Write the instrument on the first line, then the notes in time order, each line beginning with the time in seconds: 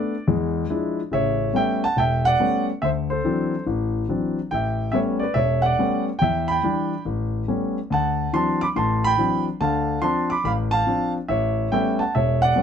grand piano
Already playing: A3 B3 D4 D5
0.27 E2 G#3
0.70 F3 G#3 D4 E4
1.11 A1 C#3 C#5 E5
1.53 G3 A3 B3 C#4 G5
1.57 E5
1.84 F#5 A5
1.96 E1 E5 G5
2.25 D5 F#5
2.39 G3 A3 B3 C#4
2.82 D2 C5 E5
3.10 A4 C5
3.24 E3 F#3 C4 D4
3.67 A1
4.09 E3 F#3 C4 D4
4.51 A1 E5 G5
4.92 G3 A3 B3 C#4 C#5 E5
5.19 B4 D5
5.34 E1 C#5 E5
5.62 D5 F#5
5.79 G3 A3 B3 C#4
6.19 E2 E5 G5
6.48 G5 B5
6.63 E3 G3 D4
7.05 A1
7.48 G3 A3 B3 C#4
7.90 D2 F#5 A5
8.33 E3 F#3 C4 D4 A5 C6
8.61 B5 D6
8.75 A1 A2 A5 C6
9.04 G5 B5
9.18 E3 F#3 C4 D4
9.60 D2 D3 F5 A5
10.02 F3 C4 D4 A5 C6
10.30 B5 D6
10.44 A1 F5 B5
10.71 F5 A5
10.87 F3 C4 D4
11.28 A1 C#5 E5
11.72 G3 A3 B3 C#4 E5 G5
11.99 F#5 A5
12.15 E1 C#5 E5
12.42 D5 F#5
12.56 G3 A3 B3 C#4